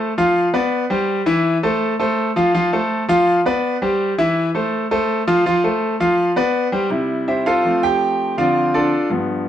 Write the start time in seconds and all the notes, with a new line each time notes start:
Already playing: A3 A4 C5
0.18 F3 F4 F5
0.54 B3 B4 D5
0.90 G3 G4 C5
1.26 E3 E4 E5
1.63 A3 A4 C5
2.00 A3 A4 C5
2.36 F3 F4 F5
2.54 F3 F4 F5
2.73 A3 A4 C5
3.08 F3 F4 F5
3.46 B3 B4 D5
3.82 G3 G4 C5
4.18 E3 E4 E5
4.55 A3 A4 C5
4.91 A3 A4 C5
5.27 F3 F4 F5
5.46 F3 F4 F5
5.64 A3 A4 C5
6.00 F3 F4 F5
6.36 B3 B4 D5
6.72 G3 G4 C5
6.90 C3 G3 E4
7.28 E4 G4 C5 E5
7.46 F4 A4 C5 F5
7.64 F3 A3 C4
7.83 G4 G5
8.37 D3 F3 C4 F4 C5 D5 F5
8.74 D4 F4 A4 D5
9.10 G2 F3 B3